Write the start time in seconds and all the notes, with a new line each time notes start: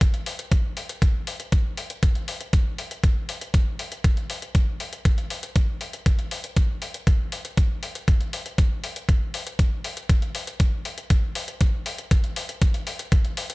0.01 kick, closed hi-hat
0.14 closed hi-hat
0.26 open hi-hat
0.39 closed hi-hat
0.52 kick, closed hi-hat
0.77 open hi-hat
0.89 closed hi-hat
1.02 kick, closed hi-hat
1.27 open hi-hat
1.40 closed hi-hat
1.52 kick, closed hi-hat
1.77 open hi-hat
1.90 closed hi-hat
2.03 kick, closed hi-hat
2.15 closed hi-hat
2.28 open hi-hat
2.41 closed hi-hat
2.53 kick, closed hi-hat
2.78 open hi-hat
2.91 closed hi-hat
3.04 kick, closed hi-hat
3.29 open hi-hat
3.41 closed hi-hat
3.54 kick, closed hi-hat
3.79 open hi-hat
3.92 closed hi-hat
4.04 kick, closed hi-hat
4.17 closed hi-hat
4.30 open hi-hat
4.42 closed hi-hat
4.55 kick, closed hi-hat
4.80 open hi-hat
4.93 closed hi-hat
5.05 kick, closed hi-hat
5.18 closed hi-hat
5.30 open hi-hat
5.43 closed hi-hat
5.56 kick, closed hi-hat
5.81 open hi-hat
5.93 closed hi-hat
6.06 kick, closed hi-hat
6.19 closed hi-hat
6.31 open hi-hat
6.44 closed hi-hat
6.57 kick, closed hi-hat
6.82 open hi-hat
6.94 closed hi-hat
7.07 kick, closed hi-hat
7.32 open hi-hat
7.45 closed hi-hat
7.57 kick, closed hi-hat
7.83 open hi-hat
7.95 closed hi-hat
8.08 kick, closed hi-hat
8.21 closed hi-hat
8.33 open hi-hat
8.46 closed hi-hat
8.58 kick, closed hi-hat
8.84 open hi-hat
8.96 closed hi-hat
9.09 kick, closed hi-hat
9.34 open hi-hat
9.47 closed hi-hat
9.59 kick, closed hi-hat
9.84 open hi-hat
9.97 closed hi-hat
10.09 kick, closed hi-hat
10.22 closed hi-hat
10.35 open hi-hat
10.47 closed hi-hat
10.60 kick, closed hi-hat
10.85 open hi-hat
10.98 closed hi-hat
11.10 kick, closed hi-hat
11.35 open hi-hat
11.48 closed hi-hat
11.61 kick, closed hi-hat
11.86 open hi-hat
11.98 closed hi-hat
12.11 kick, closed hi-hat
12.24 closed hi-hat
12.36 open hi-hat
12.49 closed hi-hat
12.62 kick, closed hi-hat
12.74 closed hi-hat
12.87 open hi-hat
12.99 closed hi-hat
13.12 kick, closed hi-hat
13.25 closed hi-hat
13.37 open hi-hat
13.50 closed hi-hat